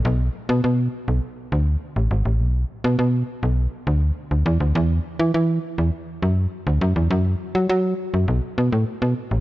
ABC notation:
X:1
M:4/4
L:1/16
Q:1/4=102
K:Bdor
V:1 name="FM bass" clef=bass
B,,,2 z B,, B,,2 z B,,, z2 D,,2 z A,,, G,,, A,,, | B,,,2 z B,, B,,2 z B,,,2 z D,,2 z D,, E,, D,, | E,,2 z E, E,2 z E,, z2 F,,2 z D,, F,, E,, | F,,2 z F, F,2 z F,, B,,, z B,, A,, z B,, z A,,, |]